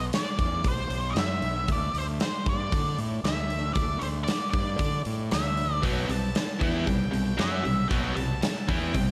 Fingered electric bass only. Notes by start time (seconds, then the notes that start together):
0.39 E2
0.64 B1
0.90 B1
1.15 F#2
1.42 B1
1.69 D2
1.94 D2
2.46 G2
2.73 D3
2.98 A2
3.24 D2
3.76 D2
4.01 D2
4.54 G2
4.79 D3
5.06 A2
5.32 D2
5.84 B1
6.09 B1
6.61 E2
6.87 B1
7.13 B1
7.39 F#2
7.65 B1
7.91 B1
8.17 B1
8.69 E2
8.95 B1